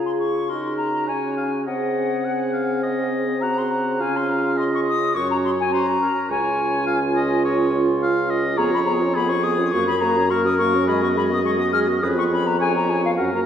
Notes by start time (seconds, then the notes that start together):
Already playing: C#3 F4 G#4
0.06 C6
0.19 C#6
0.49 D#4 F#4 A#4 C6
0.77 A#5
1.08 C#4 C#5 G#5
1.37 F5
1.66 C4 G#4 D#5 F#5
2.25 F#5
2.53 F5
2.83 D#5
3.41 F#4 F#5 A#5
3.58 C6
3.71 A#5
3.99 C#3 C#4 F4 F5 G#5
4.16 C6
4.29 A#5
4.57 D#5 C6
4.74 C#6
4.88 D#6
5.15 F#2 C#4 F#4 C#5 C#6
5.31 A#5
5.44 C6
5.60 G#5
5.72 C#4 F#4 C5 A#5
6.02 A#4
6.29 C#2 C#4 F4 C#5 G#5
6.87 F5
7.16 D#5
7.45 C#5
8.03 F5
8.30 D#5
8.57 F2 B3 G#4 C#5 A#5
8.71 C#4 F4 B5
8.85 B3 G#4 A#5
9.00 C#4 F4
9.15 B3 G#4 B5
9.29 C#4 F4 C#6
9.43 B3 G#4 D#6
9.59 C#4 F4
9.71 F#2 A#3 F#4 C#6
9.87 C#4 A#4 B5
10.01 A#3 F#4 A#5
10.17 C#4 A#4
10.30 A#3 F#4 A#4 C#6
10.45 C#4 A#4 D#6
10.58 A#3 F#4 C#6
10.74 C#4 A#4
10.87 G#3 G#4 D#5 B5
11.02 B3 F#4 C#6
11.15 G#3 G#4 B5
11.30 B3 F#4 D#6
11.44 G#3 G#4 C#6
11.58 B3 F#4 D#6
11.72 G#3 G#4 F6
11.88 B3 F#4
12.02 F2 C#4 G#4 B4 D#6
12.16 B3 F4 C#6
12.30 C#4 G#4 B5
12.45 B3 F4 A#5
12.59 C#4 G#4 C#5 G#5
12.74 B3 F4 A#5
12.89 C#4 G#4 G#5
13.03 B3 F4 F5
13.17 F#2 C#4 F#4 A#4 F#5
13.32 A#3 A#4 A#5